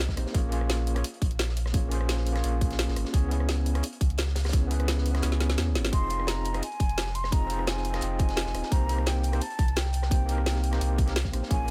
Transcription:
0.09 C2, kick, snare
0.16 A#1 A#3 C4 D#4 G4 C5, cross-stick, closed hi-hat
0.26 snare
0.33 A#1 A#3 C#4 F4 G#4 C#5, kick, closed hi-hat
0.49 A#3 C#4 F4, closed hi-hat
0.54 G#4 C#5
0.61 cross-stick
0.69 snare, closed hi-hat
0.87 closed hi-hat
0.94 A#3 C#4 F4 G#4 C#5, cross-stick, closed hi-hat
1.04 closed hi-hat
1.14 closed hi-hat
1.22 A#1, kick, closed hi-hat
1.31 closed hi-hat
1.39 snare, closed hi-hat
1.49 snare
1.57 closed hi-hat
1.66 cross-stick, snare
1.73 A#1 A#3 C#4 F4 G#4 C#5, kick, closed hi-hat
1.88 A#3 C#4 F4, closed hi-hat
1.93 G#4 C5
2.01 cross-stick
2.09 snare, closed hi-hat
2.17 snare
2.27 closed hi-hat
2.32 A#3 C#4 F4, cross-stick, snare, closed hi-hat
2.37 G#4 C#5
2.44 A#1, closed hi-hat
2.61 kick, closed hi-hat
2.71 snare, closed hi-hat
2.79 snare, closed hi-hat
2.88 A#1, snare
2.96 G#1, cross-stick, closed hi-hat
3.05 snare
3.12 C#2 B3 C#4 E4 G#4 C#5, kick, closed hi-hat
3.28 B3 C#4 E4, closed hi-hat
3.33 G#4 C#5
3.40 cross-stick
3.49 snare, closed hi-hat
3.66 closed hi-hat
3.73 B3 C#4 E4 G#4 C#5, cross-stick, closed hi-hat
3.83 closed hi-hat
3.93 closed hi-hat
4.01 C#2, kick, closed hi-hat
4.10 closed hi-hat
4.18 snare, closed hi-hat
4.27 snare
4.36 snare, closed hi-hat
4.44 cross-stick, snare, closed hi-hat
4.49 B3 C#4, snare, closed hi-hat
4.53 C#2 E4 G#4 C#5, kick, closed hi-hat
4.67 B3 C#4 E4, closed hi-hat
4.72 G#4 B4, closed hi-hat
4.80 cross-stick, closed hi-hat
4.88 snare, closed hi-hat
4.98 snare
5.06 closed hi-hat
5.11 B3 C#4 E4, cross-stick, closed hi-hat
5.15 G#4 C#5, snare
5.22 C#2, snare, closed hi-hat
5.32 snare
5.40 snare, closed hi-hat
5.49 snare, closed hi-hat
5.58 E2, snare, closed hi-hat
5.67 C#2
5.75 G#1, snare, closed hi-hat
5.85 snare
5.91 F1 C4 D#4 F4 G#4 D#5 C6, kick, closed hi-hat
6.07 C4 D#4 F4, closed hi-hat
6.12 G#4 D#5
6.20 cross-stick
6.27 A#5, snare, closed hi-hat
6.45 closed hi-hat
6.53 C4 D#4 F4 G#4 D#5, cross-stick, closed hi-hat
6.62 G#5, closed hi-hat
6.72 closed hi-hat
6.80 F1, kick, closed hi-hat
6.89 closed hi-hat
6.98 snare, closed hi-hat
7.06 snare
7.15 C6, closed hi-hat
7.24 cross-stick, snare
7.31 F1 C4 D#4 F4 G#4 D#5 A#5, kick, closed hi-hat
7.46 C4 D#4 F4, closed hi-hat
7.51 G#4 C5
7.59 cross-stick
7.67 G#5, snare, closed hi-hat
7.77 snare
7.85 closed hi-hat
7.90 C4 D#4 F4, cross-stick, snare, closed hi-hat
7.95 G#4 D#5
8.01 F1 G5, closed hi-hat
8.19 G#5, kick, closed hi-hat
8.29 snare, closed hi-hat
8.37 snare, closed hi-hat
8.46 F1, snare
8.54 D#1, cross-stick, closed hi-hat
8.63 snare
8.70 C2 A#3 C4 D#4 G4 C5 A#5, kick, closed hi-hat
8.86 A#3 C4 D#4, closed hi-hat
8.91 G4 C5
8.98 cross-stick
9.06 G5, snare, closed hi-hat
9.23 closed hi-hat
9.31 A#3 C4 D#4 G4 C5, cross-stick, closed hi-hat
9.41 A5, closed hi-hat
9.50 closed hi-hat
9.59 C2, kick, closed hi-hat
9.68 closed hi-hat
9.76 G5, snare, closed hi-hat
9.85 snare
9.93 closed hi-hat
10.02 cross-stick, snare
10.09 C2 A#3 C4 D#4 G4 C5, kick, closed hi-hat
10.26 A#3 C4 D#4, closed hi-hat
10.30 G4 A#4
10.38 cross-stick
10.46 snare, closed hi-hat
10.55 snare
10.64 closed hi-hat
10.71 A#3 C4 D#4 G4 C5, cross-stick, snare, closed hi-hat
10.81 C2, closed hi-hat
10.98 kick, closed hi-hat
11.06 A#3 C4 D#4 G4 A#4, snare, closed hi-hat
11.16 snare, closed hi-hat
11.24 C2, kick, snare
11.31 A#1 A#3 C4 D#4 G4 C5, cross-stick, closed hi-hat
11.43 snare
11.49 A#1 A#3 C#4 F4 G#4 C#5 G#5, kick, closed hi-hat
11.65 A#3 C#4

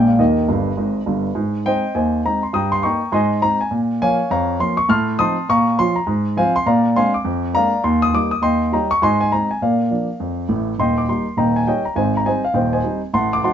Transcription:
Already playing: A#1 A#2 G#3 A#3 D4 G5
0.08 F5
0.19 D#2 D#3 G4 A#4 D#5
0.48 G1 G2
0.77 G#1 G#2
1.06 G1 G2
1.35 G#2
1.65 G#3 C4 D#4 C5 D#5 G5
1.95 D#2 C5 D#5 G#5
2.25 G#3 C4 D#4 A#5
2.43 C6
2.53 G2 G5 A#5 D#6
2.72 C6
2.83 A#3 D#4 G5 A#5 C#6
3.12 G#2 D#5 G#5 C6
3.42 G#3 C4 D#4 A#5
3.61 G#5
3.71 A#2
4.02 F3 A#3 C#4 C#5 F5 G#5
4.30 F2 C#5 F5 A#5
4.59 F3 A#3 C#4 C6
4.77 C#6
4.89 A2 A5 C6 F6
5.19 F3 C4 D#4 A5 C6 D#6
5.49 A#2 F5 A#5 C#6
5.79 F3 C#4 F4 C6
5.96 A#5
6.07 G#2
6.37 F3 C4 F4 C5 F5 G#5
6.56 C6
6.66 A#2 D5 F5 A#5
6.95 G#3 C4 D4 F5 G#5 C6
7.14 D6
7.25 F2
7.54 G#3 A#3 D4 D5 F5 A#5
7.84 D#2 C6
8.02 D#6
8.14 G3 A#3 D#4 D6
8.31 D#6
8.42 D#2 D#5 G5 C6
8.72 G3 C#4 D#4 D#5 G5 A#5
8.91 C#6
9.02 G#2 D#5 G#5 C6
9.21 G#5
9.32 G#3 C4 D#4 A#5
9.51 G#5
9.62 A#2 A#4 D5 F5
9.91 F3 A#3 D4
10.20 F2
10.49 A1 A2
10.79 D#1 D#2 D#5 G5 C6
10.98 D6
11.09 G3 A#3 D#4 C6
11.37 D#1 D#2 D#5 G5 A#5
11.56 G#5
11.67 G3 C#4 D#4 C#5 D#5 G5
11.85 A#5
11.96 G#1 G#2 C5 D#5 G#5
12.17 A#5
12.26 G3 C4 D#4 C5 D#5 G#5
12.45 F5
12.54 D#1 D#2 C5 D#5 G5
12.73 C5 D#5 G#5
12.84 G3 C4 D#4
13.13 A1 A2 F#5 A5 C6
13.33 D6
13.44 F#3 C4 D#4 F#5 A5 C6

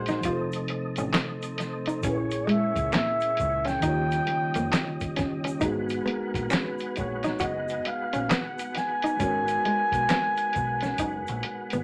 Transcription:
Already playing: A#1 A#2 G#3 D#4 F#4 G#4 C5 D#5
0.06 D#4, snare, closed hi-hat, shaker
0.21 C3 F3 A3 D#4, kick, closed hi-hat, shaker
0.25 F1 D#4 F4 G4 C5
0.33 A4
0.52 closed hi-hat, shaker
0.68 muted hollow-body jazz guitar stroke, closed hi-hat
0.96 A1 C#4, closed hi-hat, shaker
1.13 C4 C5, finger snap, snare, clap, closed hi-hat, shaker
1.42 closed hi-hat, shaker
1.58 muted hollow-body jazz guitar stroke, snare, closed hi-hat, shaker
1.86 D#4, closed hi-hat, shaker
2.01 A#1 A#2 G#3 A#3 C#4, kick, closed hi-hat, shaker
2.05 E4 G#4 C#5
2.09 B4
2.16 C#5
2.31 closed hi-hat, shaker
2.47 G#3 E5, closed hi-hat
2.76 C#2, kick, closed hi-hat, shaker
2.92 A#3 E5, finger snap, snare, clap, closed hi-hat, shaker
3.20 closed hi-hat, shaker
3.37 C#2, muted hollow-body jazz guitar stroke, kick, closed hi-hat, shaker
3.65 C#4 G5, snare, closed hi-hat, shaker
3.79 C#3 D#3 G3 A#3 D#4, kick, closed hi-hat, shaker
3.83 D#2 F4 G4
3.88 C#5
4.11 closed hi-hat, shaker
4.27 muted hollow-body jazz guitar stroke, closed hi-hat
4.54 F2 A#3, closed hi-hat, shaker
4.72 finger snap, muted hollow-body jazz guitar stroke, snare, clap, closed hi-hat, shaker
5.00 kick, closed hi-hat, shaker
5.16 C#4, kick, snare, closed hi-hat, shaker
5.44 C#4, closed hi-hat, shaker
5.60 G#1 G#3 B3 D#4 F#4, kick, closed hi-hat, shaker
5.64 B3 F#4 G#4
5.89 closed hi-hat, shaker
6.02 B3 B4
6.08 A#4, closed hi-hat
6.34 A#1, kick, closed hi-hat, shaker
6.50 C#4 B4, finger snap, snare, clap, closed hi-hat, shaker
6.78 closed hi-hat, shaker
6.96 A#1 C#5, muted hollow-body jazz guitar stroke, kick, closed hi-hat, shaker
7.23 D#4, snare, closed hi-hat, shaker
7.39 F#1 F#4 D#5, kick, closed hi-hat, shaker
7.68 closed hi-hat, shaker
7.85 F5, muted hollow-body jazz guitar stroke, closed hi-hat
8.13 A#1 C#4, closed hi-hat, shaker
8.30 B3 F#5, finger snap, snare, clap, closed hi-hat, shaker
8.58 closed hi-hat, shaker
8.75 G#5, muted hollow-body jazz guitar stroke, snare, closed hi-hat, shaker
9.02 D#4, closed hi-hat, shaker
9.17 G#1 G#3 C#4 D#4, kick, closed hi-hat, shaker
9.21 F#4 A#4
9.25 C#5
9.48 closed hi-hat, shaker
9.65 G#3, closed hi-hat
9.92 B1, kick, closed hi-hat, shaker
10.09 B3, finger snap, snare, clap, closed hi-hat, shaker
10.37 closed hi-hat, shaker
10.53 B1, muted hollow-body jazz guitar stroke, kick, closed hi-hat, shaker
10.81 C#4, snare, closed hi-hat, shaker
10.98 F#1 D#4, kick, closed hi-hat, shaker
11.27 A#1, closed hi-hat, shaker
11.43 muted hollow-body jazz guitar stroke, closed hi-hat
11.70 G#1 B3, closed hi-hat, shaker

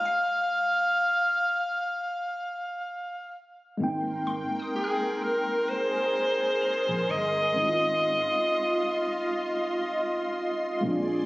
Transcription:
Already playing: F5
0.05 F5
3.77 G#1 G#3 A#3 C4 A#4 G5 C6
3.82 D#4 G5
4.27 C6
4.60 D#6
4.75 G#4
4.84 F6
5.23 A#4
5.68 G#4 C5
6.61 A#5
6.89 A#1
7.09 G1 D#5
7.53 G#1 G#3 C4 C#4 F4 D#5
7.57 D#4 E4
7.65 F4
10.81 A#1 G#3 A#3 C4 G#4 D5 C6
10.85 D4 F4

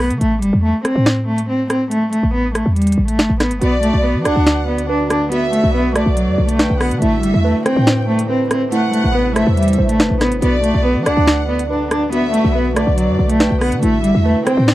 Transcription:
Already playing: B1
0.00 B3
0.10 D3, closed hi-hat
0.21 A1 A3, closed hi-hat
0.42 G1 G3, closed hi-hat
0.53 E2
0.64 A3
0.85 C4, cross-stick, closed hi-hat
0.96 A2
1.06 finger snap, snare, closed hi-hat
1.28 A3
1.38 closed hi-hat
1.49 C4
1.70 C4, cross-stick, closed hi-hat
1.91 A3, closed hi-hat
2.13 A3, closed hi-hat
2.23 A1
2.34 B3
2.55 A3, cross-stick, closed hi-hat
2.66 E2
2.76 G3, closed hi-hat
2.82 closed hi-hat
2.87 closed hi-hat
2.92 closed hi-hat
2.98 A1
3.08 A3, closed hi-hat
3.19 G1, finger snap, snare, closed hi-hat
3.30 A1
3.40 B3, cross-stick, snare, closed hi-hat
3.51 G1, closed hi-hat
3.61 B1 D3 A3 B3 D4 F#4 D5, closed hi-hat
3.83 A3, closed hi-hat
3.93 B1
4.04 B3 B4
4.15 F#3
4.25 B1 D4 D5 F#5, cross-stick, closed hi-hat
4.36 D2
4.47 finger snap, snare, closed hi-hat
4.68 B3 D5
4.78 closed hi-hat
4.89 D4 B4
5.10 D4, cross-stick, closed hi-hat
5.32 B3 F#4 E5, closed hi-hat
5.53 A3, closed hi-hat
5.64 B1
5.74 B3 B4
5.95 A3 D5, cross-stick, closed hi-hat
6.06 B1
6.17 F#3, closed hi-hat
6.27 F#2
6.38 B1 D5
6.49 A3, closed hi-hat
6.59 B4 G5, finger snap, snare, closed hi-hat
6.70 B1
6.80 B3 F#5, cross-stick, open hi-hat
6.91 D3, closed hi-hat
7.02 A1 C3 A3 E4 E5, closed hi-hat
7.23 G1 G3, closed hi-hat
7.34 E2
7.44 A3 B4
7.66 C4 C5 G5, cross-stick, closed hi-hat
7.76 A2
7.87 finger snap, snare, closed hi-hat
8.08 A3 C5
8.19 closed hi-hat
8.30 C4 B4
8.51 C4, cross-stick, closed hi-hat
8.72 A3 E4 F#5, closed hi-hat
8.93 A3, closed hi-hat
9.04 A1
9.15 B3 B4
9.35 A3 C5 E5, cross-stick, closed hi-hat
9.47 E2
9.57 G3, closed hi-hat
9.63 closed hi-hat
9.68 closed hi-hat
9.73 closed hi-hat
9.78 A1 C5
9.89 A3, closed hi-hat
10.00 G1 B4, finger snap, snare, closed hi-hat
10.10 A1
10.21 B3, cross-stick, snare, closed hi-hat
10.32 G1, closed hi-hat
10.42 B1 D3 B3 F#4 D5, closed hi-hat
10.64 A3, closed hi-hat
10.74 B1
10.85 B3 B4
10.96 F#3
11.06 B1 D4 D5 F#5, cross-stick, closed hi-hat
11.17 D2
11.27 finger snap, snare, closed hi-hat
11.49 B3 D5
11.59 closed hi-hat
11.70 D4 B4
11.91 D4, cross-stick, closed hi-hat
12.12 B3 F#4 E5, closed hi-hat
12.34 A3, closed hi-hat
12.45 B1
12.55 B3 B4
12.76 A3 D5, cross-stick, closed hi-hat
12.87 B1
12.98 F#3, closed hi-hat
13.08 F#2
13.19 B1 D5
13.30 A3, closed hi-hat
13.40 B4 G5, finger snap, snare, closed hi-hat
13.51 B1
13.61 B3 F#5, cross-stick, open hi-hat
13.72 D3, closed hi-hat
13.83 A1 C3 A3 C4 E4 E5, closed hi-hat
14.04 G1 G3, closed hi-hat
14.15 E2
14.25 A3 B4
14.46 C4 C5 G5, cross-stick, closed hi-hat
14.57 A2
14.68 finger snap, snare, closed hi-hat

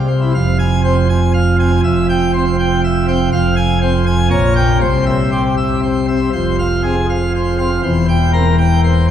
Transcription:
Already playing: C2 C3
0.08 C4
0.21 E4
0.34 F1 F2 F5
0.59 G#5
0.84 C4 C5
1.09 G#5
1.34 F5
1.59 C4 G#5
1.84 F1 F2 E5
2.09 G5
2.34 C4 C5
2.59 G5
2.84 E5
3.08 C4 G5
3.32 F1 F2 F5
3.56 G#5
3.82 C4 C5
4.06 G#5
4.31 A#1 A#2 C#5
4.56 G5
4.81 C2 C3 C5
5.06 E5
5.32 C4 G4
5.57 E5
5.83 C5
6.08 C4 E5
6.33 F1 F2 C5
6.59 F5
6.83 C4 G#4
7.10 F5
7.35 C5
7.58 C4 F5
7.83 E1 E2 C5
8.09 G5
8.33 C4 A#4
8.58 G5
8.84 C5

